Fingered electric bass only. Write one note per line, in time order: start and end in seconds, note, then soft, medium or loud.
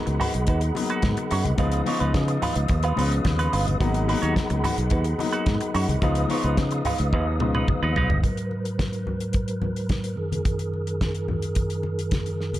0.07 0.18 C#2 medium
0.35 0.48 B1 medium
0.48 0.70 D#2 medium
1.03 1.14 G#2 loud
1.32 1.42 F#2 medium
1.46 1.56 C2 medium
1.59 1.81 C#2 loud
2.01 2.12 C#2 medium
2.15 2.37 C#3 loud
2.56 2.67 C#2 medium
2.70 2.92 D#2 loud
2.97 3.19 C#2 medium
3.25 3.47 D#2 medium
3.53 3.75 G1 medium
3.81 4.14 G#1 loud
4.23 4.33 D#2 medium
4.51 4.61 C#2 medium
4.78 4.89 B1 medium
4.92 5.13 D#2 medium
5.47 5.58 G#2 loud
5.75 5.85 F#2 medium
5.88 5.99 C2 medium
6.02 6.24 C#2 loud
6.44 6.55 C#2 loud
6.58 6.80 C#3 loud
7.00 7.13 C#2 medium
7.13 7.41 D#2 medium
7.41 7.63 C#2 medium
7.83 7.93 D#2 medium
7.96 8.07 B1 medium
8.10 8.21 G1 medium